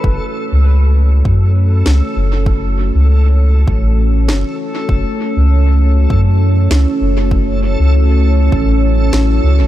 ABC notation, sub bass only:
X:1
M:4/4
L:1/16
Q:"Swing 16ths" 1/4=99
K:F#m
V:1 name="Sub bass" clef=bass
F,,, z2 C,,4- C,, F,,4 C,, z F,,,2- | F,,,3 C,,4- C,, A,,,4 F,,, z3 | F,,, z2 C,,4- C,, F,,4 C,, z F,,,2- | F,,,3 C,,4- C,, A,,,4 A,,,2 C,, F,,, |]